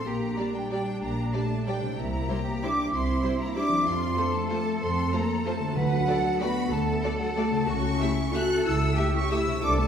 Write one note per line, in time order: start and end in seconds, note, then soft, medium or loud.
0.00 1.91 A#2 medium
0.00 1.93 D4 soft
0.00 1.92 G4 soft
0.05 0.33 A#1 medium
0.05 0.54 A#3 medium
0.05 0.38 G4 medium
0.05 0.55 A#5 medium
0.05 0.56 A#5 medium
0.38 0.46 G3 soft
0.38 1.99 D4 medium
0.38 0.46 G4 soft
0.38 0.46 D5 soft
0.54 0.70 G3 medium
0.54 0.70 G5 medium
0.54 0.71 G5 medium
0.71 0.79 G3 soft
0.71 1.02 G3 medium
0.71 0.80 G4 medium
0.71 0.79 D5 soft
0.71 1.02 G5 medium
0.71 1.03 G5 medium
1.03 1.29 A#1 medium
1.03 1.34 A#3 medium
1.03 1.34 A#5 medium
1.33 1.42 G3 soft
1.33 1.67 A3 medium
1.33 1.42 G4 soft
1.33 1.42 D5 medium
1.33 1.67 A5 medium
1.66 1.98 G3 medium
1.66 1.75 G3 medium
1.66 1.75 G4 medium
1.66 1.76 D5 medium
1.66 1.97 G5 medium
1.66 1.98 G5 medium
1.80 3.78 C3 soft
1.85 3.72 C4 soft
1.89 3.83 E4 soft
1.94 3.85 G4 soft
1.98 2.25 C2 medium
1.98 2.63 A#3 medium
1.98 2.29 E4 medium
1.98 2.34 A#5 medium
1.98 2.62 A#5 medium
2.29 2.38 G3 medium
2.29 2.38 E4 medium
2.29 2.93 G4 medium
2.29 2.37 C5 soft
2.63 2.71 G3 medium
2.63 2.93 D4 medium
2.63 2.71 E4 medium
2.63 2.71 C5 medium
2.63 2.93 D6 medium
2.93 3.18 C2 medium
2.93 3.39 C4 medium
2.93 3.85 E4 medium
2.93 3.39 C6 medium
2.93 3.40 C6 medium
3.23 3.32 G3 medium
3.23 3.32 E4 medium
3.23 3.31 C5 medium
3.40 3.56 A#3 medium
3.40 3.56 A#5 medium
3.55 3.64 G3 medium
3.55 3.86 D4 medium
3.55 3.63 E4 medium
3.55 3.64 C5 medium
3.55 3.85 D6 medium
3.55 3.86 D6 medium
3.68 5.69 F3 soft
3.73 5.71 C4 soft
3.78 5.74 F4 soft
3.82 4.12 F2 medium
3.82 5.71 A4 soft
3.86 4.34 C4 medium
3.86 4.17 F4 medium
3.86 4.34 C6 medium
4.17 4.26 A3 soft
4.17 4.25 F4 medium
4.17 5.77 A4 medium
4.17 4.25 C5 soft
4.34 4.50 A3 medium
4.34 4.48 A5 medium
4.50 4.58 A3 medium
4.50 4.81 A3 medium
4.50 4.58 F4 medium
4.50 4.58 C5 medium
4.50 4.80 A5 medium
4.80 5.07 F2 medium
4.80 5.13 C4 medium
4.80 5.12 C6 medium
5.13 5.21 A3 medium
5.13 5.46 A#3 medium
5.13 5.21 F4 soft
5.13 5.21 C5 medium
5.13 5.46 A#5 medium
5.46 5.54 A3 medium
5.46 5.77 A3 medium
5.46 5.54 F4 medium
5.46 5.54 C5 medium
5.46 5.77 A5 medium
5.59 7.61 D3 medium
5.63 7.63 D4 soft
5.68 7.65 F#4 soft
5.72 7.63 A4 soft
5.77 6.03 D2 medium
5.77 6.22 D3 medium
5.77 6.40 F#3 medium
5.77 6.08 B4 medium
5.77 6.40 F#5 loud
5.77 6.42 F#5 medium
6.08 6.16 A3 medium
6.08 6.16 F#4 medium
6.08 6.42 A4 medium
6.08 6.17 D5 medium
6.41 6.49 A3 medium
6.41 6.72 B3 medium
6.41 6.49 F#4 medium
6.41 6.72 F#4 medium
6.41 6.50 D5 medium
6.41 6.71 B5 medium
6.41 6.72 B5 loud
6.72 6.98 D2 medium
6.72 7.05 A3 medium
6.72 7.69 A4 medium
6.72 7.20 A5 medium
7.03 7.11 A3 medium
7.03 7.11 F#4 medium
7.03 7.12 D5 medium
7.20 7.27 F#3 medium
7.20 7.36 F#5 medium
7.20 7.37 F#5 medium
7.36 7.68 A3 medium
7.36 7.45 A3 medium
7.36 7.45 F#4 medium
7.36 7.45 D5 medium
7.36 7.68 A5 medium
7.51 9.56 C#3 medium
7.55 9.58 E4 medium
7.65 8.34 C#4 medium
7.65 8.01 F#4 medium
7.65 9.58 A4 soft
7.65 8.34 C#6 medium
7.69 7.95 C#2 medium
7.69 8.06 C#6 loud
8.00 8.09 A3 medium
8.00 8.34 E4 medium
8.00 8.09 G4 medium
8.00 8.08 E5 medium
8.33 8.42 A3 medium
8.33 8.65 F#4 loud
8.33 8.42 G4 medium
8.33 8.98 A4 medium
8.33 8.42 E5 medium
8.33 8.65 F#6 loud
8.33 8.66 F#6 medium
8.65 8.92 C#2 medium
8.65 9.13 E4 medium
8.65 9.15 E6 loud
8.65 9.14 E6 medium
8.97 9.05 A3 medium
8.97 9.05 G4 medium
8.97 9.31 G4 medium
8.97 9.05 E5 medium
9.14 9.31 C#4 medium
9.14 9.32 C#6 loud
9.14 9.32 C#6 medium
9.30 9.39 A3 medium
9.30 9.63 E4 medium
9.30 9.39 G4 medium
9.30 9.40 E5 medium
9.30 9.64 E6 medium
9.46 9.88 C3 medium
9.50 9.88 D4 medium
9.54 9.88 F#4 medium
9.59 9.88 A4 soft
9.59 9.79 D6 medium
9.63 9.88 C2 medium
9.63 9.79 D4 loud
9.63 9.88 A4 medium
9.63 9.70 D6 loud
9.78 9.88 A3 medium
9.78 9.88 A5 medium